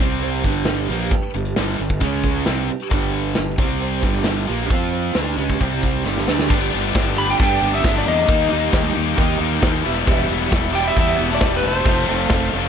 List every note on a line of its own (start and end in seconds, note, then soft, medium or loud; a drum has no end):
0.00 0.42 C2 medium
0.00 0.44 C3 medium
0.00 0.44 G3 medium
0.00 0.21 C4 soft
0.00 0.45 C4 loud
0.00 0.22 G4 medium
0.00 0.21 C5 medium
0.22 0.44 C3 medium
0.22 0.45 G3 medium
0.22 0.45 C4 medium
0.22 0.45 G4 medium
0.22 0.44 C5 medium
0.22 closed hi-hat medium
0.44 0.86 G1 medium
0.44 0.89 G2 medium
0.44 0.87 D3 loud
0.44 0.90 G3 medium
0.44 0.65 G3 soft
0.44 0.66 D4 soft
0.44 0.67 G4 medium
0.44 0.67 B4 medium
0.44 kick medium
0.44 closed hi-hat medium
0.65 0.89 G3 medium
0.65 0.90 D4 medium
0.65 0.90 G4 medium
0.65 0.89 B4 medium
0.65 snare loud
0.65 closed hi-hat medium
0.88 1.10 A#1 loud
0.88 1.11 A#2 medium
0.88 1.11 F3 medium
0.88 1.11 A#3 medium
0.88 1.12 D4 soft
0.88 1.12 G4 medium
0.88 1.12 B4 medium
0.88 closed hi-hat medium
0.93 1.11 G3 soft
0.99 closed hi-hat medium
1.10 1.35 G2 medium
1.10 1.35 D3 medium
1.10 1.35 G3 medium
1.10 1.35 D4 medium
1.10 1.35 G4 medium
1.10 1.34 B4 loud
1.10 muted fingered electric bass stroke soft
1.10 muted distorted electric guitar stroke medium
1.10 muted overdriven electric guitar stroke medium
1.10 kick loud
1.10 closed hi-hat medium
1.34 1.56 G1 medium
1.34 1.52 G2 medium
1.34 1.53 D3 medium
1.34 1.56 G3 medium
1.34 1.57 D4 medium
1.34 1.58 G4 medium
1.34 1.57 B4 medium
1.34 closed hi-hat medium
1.45 closed hi-hat medium
1.56 1.78 G1 medium
1.56 1.78 G2 medium
1.56 1.78 D3 loud
1.56 1.80 G3 medium
1.56 1.79 G3 loud
1.56 1.80 D4 medium
1.56 1.79 G4 medium
1.56 1.78 B4 medium
1.56 snare loud
1.56 closed hi-hat medium
1.79 2.00 G1 medium
1.79 1.97 G2 medium
1.79 1.97 D3 medium
1.79 2.03 G3 soft
1.79 2.03 D4 medium
1.79 2.02 G4 medium
1.79 2.02 B4 medium
1.79 snare soft
1.79 closed hi-hat medium
1.89 kick medium
1.89 closed hi-hat medium
2.01 2.43 C#2 medium
2.01 2.45 C#3 medium
2.01 2.25 C#3 medium
2.01 2.46 G#3 medium
2.01 2.25 G#3 medium
2.01 2.46 C#4 loud
2.01 2.25 C#4 loud
2.01 2.24 G#4 medium
2.01 kick medium
2.01 closed hi-hat medium
2.23 2.47 G#3 soft
2.23 2.47 C#4 medium
2.23 2.47 G#4 medium
2.23 kick medium
2.23 closed hi-hat medium
2.35 closed hi-hat medium
2.45 2.68 C2 medium
2.45 2.67 C3 medium
2.45 2.69 G3 medium
2.45 2.68 C4 loud
2.45 2.70 D4 medium
2.45 2.69 G4 medium
2.45 snare loud
2.45 closed hi-hat medium
2.50 2.68 B4 medium
2.68 2.91 D4 soft
2.68 2.91 G4 medium
2.68 2.91 B4 medium
2.68 muted distorted electric guitar stroke medium
2.68 muted overdriven electric guitar stroke medium
2.68 muted fingered electric bass stroke soft
2.68 closed hi-hat medium
2.72 2.90 G3 soft
2.80 closed hi-hat medium
2.91 3.33 G1 loud
2.91 3.35 G2 medium
2.91 3.14 G2 medium
2.91 3.14 D3 medium
2.91 3.35 D3 loud
2.91 3.14 G3 medium
2.91 3.36 G3 loud
2.91 3.14 D4 medium
2.91 3.13 G4 medium
2.91 3.12 B4 medium
2.91 kick loud
2.91 closed hi-hat medium
3.13 3.35 G3 soft
3.13 3.36 D4 medium
3.13 3.37 G4 medium
3.13 3.36 B4 medium
3.13 closed hi-hat medium
3.25 closed hi-hat medium
3.35 3.58 G1 medium
3.35 3.54 G2 medium
3.35 3.54 D3 medium
3.35 3.59 G3 medium
3.35 3.59 D4 medium
3.35 3.58 G4 medium
3.35 3.57 B4 medium
3.35 snare loud
3.35 closed hi-hat medium
3.57 4.00 C2 medium
3.57 4.03 C3 medium
3.57 4.03 G3 medium
3.57 4.03 C4 loud
3.57 3.79 C4 soft
3.57 3.80 G4 medium
3.57 3.81 C5 medium
3.57 kick loud
3.57 closed hi-hat medium
3.80 4.03 C3 medium
3.80 4.03 G3 medium
3.80 4.03 C4 medium
3.80 4.02 G4 medium
3.80 4.02 C5 medium
3.80 closed hi-hat medium
4.02 4.45 G1 medium
4.02 4.48 G2 medium
4.02 4.46 D3 medium
4.02 4.48 G3 medium
4.02 4.24 G3 soft
4.02 4.25 D4 soft
4.02 4.26 G4 medium
4.02 4.26 B4 medium
4.02 kick medium
4.02 closed hi-hat medium
4.24 4.48 G3 medium
4.24 4.49 D4 medium
4.24 4.48 G4 medium
4.24 4.47 B4 medium
4.24 snare loud
4.24 closed hi-hat medium
4.47 4.70 A#1 medium
4.47 4.69 A#2 medium
4.47 4.68 F3 medium
4.47 4.70 A#3 medium
4.47 4.71 D4 soft
4.47 4.71 G4 medium
4.47 4.71 B4 medium
4.47 closed hi-hat medium
4.51 4.70 G3 soft
4.58 closed hi-hat medium
4.70 5.12 F2 loud
4.70 5.14 F3 medium
4.70 4.93 F3 medium
4.70 5.15 C4 loud
4.70 4.94 C4 medium
4.70 5.15 F4 loud
4.70 4.93 F4 medium
4.70 4.92 C5 medium
4.70 kick loud
4.70 closed hi-hat medium
4.93 5.16 C4 soft
4.93 5.17 F4 medium
4.93 5.16 C5 medium
4.93 closed hi-hat medium
5.04 closed hi-hat medium
5.15 5.36 D2 medium
5.15 5.36 D3 medium
5.15 5.38 G3 medium
5.15 5.36 A3 medium
5.15 5.38 D4 loud
5.15 5.38 D4 medium
5.15 5.37 G4 medium
5.15 5.37 B4 medium
5.15 snare loud
5.15 closed hi-hat medium
5.36 5.59 C#2 medium
5.36 5.59 C#3 medium
5.36 5.59 G#3 medium
5.36 5.59 C#4 medium
5.36 5.60 D4 soft
5.36 5.60 G4 medium
5.36 5.61 B4 medium
5.36 closed hi-hat medium
5.40 5.60 G3 soft
5.50 kick medium
5.50 closed hi-hat medium
5.59 6.02 C2 medium
5.59 5.82 C3 medium
5.59 6.04 C3 medium
5.59 6.05 G3 medium
5.59 5.83 G3 medium
5.59 5.83 C4 medium
5.59 6.05 C4 medium
5.59 5.82 G4 medium
5.59 5.80 C5 loud
5.59 kick medium
5.59 closed hi-hat medium
5.81 6.04 C4 soft
5.81 6.04 G4 soft
5.81 6.05 C5 medium
5.81 kick medium
5.81 closed hi-hat medium
5.95 closed hi-hat medium
6.03 6.26 G1 medium
6.03 6.26 G2 medium
6.03 6.26 D3 medium
6.03 6.27 G3 medium
6.03 6.28 G3 loud
6.03 6.27 D4 medium
6.03 6.26 G4 medium
6.03 6.25 B4 medium
6.03 snare medium
6.17 snare medium
6.26 6.48 D2 medium
6.26 6.47 D3 medium
6.26 6.49 G3 soft
6.26 6.49 A3 medium
6.26 6.50 D4 soft
6.26 6.50 D4 medium
6.26 6.49 G4 medium
6.26 6.49 B4 medium
6.26 snare medium
6.39 snare medium
6.49 6.69 G1 loud
6.49 6.72 G2 medium
6.49 6.72 D3 loud
6.49 6.74 G3 loud
6.49 6.72 A3 medium
6.49 6.73 B3 loud
6.49 6.73 D4 medium
6.49 6.71 G4 medium
6.49 kick loud
6.49 crash loud
6.49 shaker medium
6.72 6.92 G1 medium
6.72 6.94 G3 medium
6.72 6.94 A3 medium
6.72 6.94 B3 medium
6.72 6.95 D4 medium
6.72 6.95 G4 medium
6.72 open hi-hat medium
6.72 shaker loud
6.94 7.33 G1 medium
6.94 7.19 G3 medium
6.94 7.17 A3 medium
6.94 7.16 B3 medium
6.94 7.15 D4 medium
6.94 7.15 G4 medium
6.94 kick loud
6.94 snare loud
6.94 open hi-hat medium
6.94 shaker medium
7.16 7.39 G3 medium
7.16 7.39 A3 soft
7.16 7.38 B3 medium
7.16 7.39 D4 medium
7.16 7.39 G4 medium
7.16 7.27 G4 medium
7.16 7.28 B5 loud
7.16 open hi-hat medium
7.16 shaker loud
7.27 7.32 D4 medium
7.27 7.35 G5 loud
7.27 shaker soft
7.38 7.62 G2 medium
7.38 7.58 G2 medium
7.38 7.62 D3 medium
7.38 7.63 G3 medium
7.38 7.62 A3 medium
7.38 7.60 B3 medium
7.38 7.60 D4 loud
7.38 7.71 D4 medium
7.38 7.60 G4 medium
7.38 kick loud
7.38 open hi-hat medium
7.38 shaker medium
7.43 7.72 G5 loud
7.60 7.81 G1 loud
7.60 7.83 G3 medium
7.60 7.82 A3 soft
7.60 7.83 B3 soft
7.60 7.84 D4 medium
7.60 7.84 G4 medium
7.60 open hi-hat medium
7.60 shaker loud
7.74 7.94 B3 medium
7.74 7.97 E5 medium
7.83 8.03 G1 medium
7.83 8.27 G3 medium
7.83 8.06 A3 medium
7.83 8.06 B3 medium
7.83 8.05 D4 medium
7.83 8.04 G4 medium
7.83 kick loud
7.83 snare loud
7.83 open hi-hat medium
7.83 shaker medium
7.97 8.06 A3 medium
7.97 8.08 D5 medium
8.05 8.25 E2 loud
8.05 8.27 A3 soft
8.05 8.92 A#3 medium
8.05 8.28 B3 medium
8.05 8.28 D4 soft
8.05 8.28 G4 medium
8.05 8.93 D#5 medium
8.05 open hi-hat medium
8.05 shaker loud
8.28 8.48 D#2 loud
8.28 8.50 D#3 medium
8.28 8.51 G3 medium
8.28 8.51 A#3 medium
8.28 8.50 D#4 medium
8.28 8.49 G4 medium
8.28 kick loud
8.28 open hi-hat medium
8.28 shaker medium
8.50 8.70 D#2 medium
8.50 8.71 A#3 soft
8.50 8.71 D#4 medium
8.50 8.72 G4 medium
8.50 open hi-hat medium
8.50 shaker loud
8.71 8.92 D#2 medium
8.71 9.16 D#3 medium
8.71 8.94 G3 medium
8.71 8.95 A#3 medium
8.71 8.95 D#4 medium
8.71 8.94 G4 medium
8.71 kick loud
8.71 snare loud
8.71 open hi-hat medium
8.71 shaker medium
8.95 9.15 D#2 medium
8.95 9.16 A#3 medium
8.95 9.16 D#4 medium
8.95 9.17 G4 medium
8.95 open hi-hat medium
8.95 shaker medium
9.06 shaker soft
9.17 9.37 D#2 loud
9.17 9.40 D#3 medium
9.17 9.40 G3 medium
9.17 9.40 A#3 loud
9.17 9.40 D#4 loud
9.17 9.40 G4 loud
9.17 kick loud
9.17 open hi-hat medium
9.17 shaker medium
9.40 9.59 D#2 medium
9.40 9.63 A#3 medium
9.40 9.63 D#4 medium
9.40 9.63 G4 medium
9.40 open hi-hat medium
9.40 shaker loud
9.61 9.82 D#2 medium
9.61 9.83 D#3 medium
9.61 9.85 G3 medium
9.61 9.85 A#3 medium
9.61 9.86 D#4 medium
9.61 kick loud
9.61 snare loud
9.61 open hi-hat medium
9.61 shaker medium
9.65 9.84 G4 medium
9.84 10.04 E1 medium
9.84 10.04 E2 medium
9.84 10.05 B2 medium
9.84 10.06 E3 medium
9.84 10.06 G3 medium
9.84 10.07 B3 medium
9.84 10.07 E4 medium
9.84 10.07 G4 medium
9.84 open hi-hat medium
9.84 shaker medium
10.06 10.26 E1 loud
10.06 10.51 E2 medium
10.06 10.51 B2 medium
10.06 10.29 E3 loud
10.06 10.30 G3 medium
10.06 10.30 B3 loud
10.06 10.29 E4 loud
10.06 10.28 G4 loud
10.06 kick loud
10.06 open hi-hat medium
10.06 shaker medium
10.29 10.48 E1 medium
10.29 10.51 G3 medium
10.29 10.50 B3 medium
10.29 10.51 E4 medium
10.29 10.51 G4 medium
10.29 open hi-hat medium
10.29 shaker medium
10.33 10.50 E3 medium
10.50 10.89 E1 medium
10.50 10.75 E3 medium
10.50 10.73 G3 medium
10.50 10.74 B3 medium
10.50 10.74 E4 medium
10.50 10.72 G4 medium
10.50 kick loud
10.50 snare loud
10.50 open hi-hat medium
10.50 shaker medium
10.73 10.94 E3 medium
10.73 10.95 G3 medium
10.73 10.95 B3 soft
10.73 10.84 D4 medium
10.73 10.96 E4 medium
10.73 10.96 G4 medium
10.73 10.86 G5 loud
10.73 open hi-hat medium
10.73 shaker loud
10.84 10.95 B3 medium
10.84 10.97 E5 loud
10.84 shaker soft
10.94 11.40 E2 loud
10.94 11.15 E2 loud
10.94 11.40 B2 loud
10.94 11.18 E3 medium
10.94 11.18 G3 medium
10.94 11.19 B3 medium
10.94 11.27 B3 medium
10.94 11.19 E4 medium
10.94 kick loud
10.94 open hi-hat medium
10.94 shaker medium
10.98 11.17 G4 loud
10.98 11.32 E5 loud
11.16 11.38 E1 loud
11.16 11.37 E3 medium
11.16 11.38 G3 medium
11.16 11.39 B3 medium
11.16 11.40 E4 medium
11.16 11.41 G4 medium
11.16 open hi-hat medium
11.16 shaker loud
11.20 11.40 B3 soft
11.20 11.41 E4 medium
11.31 11.51 A3 medium
11.31 11.53 D5 loud
11.38 11.60 E1 loud
11.38 11.83 E3 medium
11.38 11.63 G3 medium
11.38 11.63 B3 medium
11.38 kick loud
11.38 snare loud
11.38 open hi-hat medium
11.38 shaker medium
11.42 11.62 E4 medium
11.42 11.61 G4 medium
11.53 11.63 G3 medium
11.53 11.65 B4 medium
11.62 11.83 E1 loud
11.62 12.48 A3 medium
11.62 11.86 B3 soft
11.62 11.86 E4 medium
11.62 11.85 G4 medium
11.62 open hi-hat medium
11.62 shaker loud
11.68 12.50 C5 medium
11.83 12.04 F1 loud
11.83 12.29 F2 medium
11.83 12.29 C3 medium
11.83 12.08 F3 medium
11.83 12.08 A3 loud
11.83 12.08 C4 medium
11.83 kick loud
11.83 open hi-hat medium
11.83 shaker medium
11.87 12.08 F4 medium
11.87 12.07 A4 medium
12.07 12.27 F1 medium
12.07 12.27 F3 medium
12.07 12.29 A3 medium
12.07 12.30 C4 soft
12.07 12.31 F4 medium
12.07 12.30 A4 medium
12.07 open hi-hat medium
12.07 shaker loud
12.29 12.49 F1 medium
12.29 12.53 F3 medium
12.29 12.52 A3 medium
12.29 12.53 C4 medium
12.29 12.52 F4 medium
12.29 12.50 A4 medium
12.29 kick loud
12.29 snare loud
12.29 open hi-hat medium
12.29 shaker medium
12.52 12.69 F1 medium
12.52 12.69 F3 medium
12.52 12.69 A3 medium
12.52 12.69 C4 medium
12.52 12.69 F4 medium
12.52 12.69 A4 medium
12.52 open hi-hat medium
12.52 shaker loud
12.63 shaker soft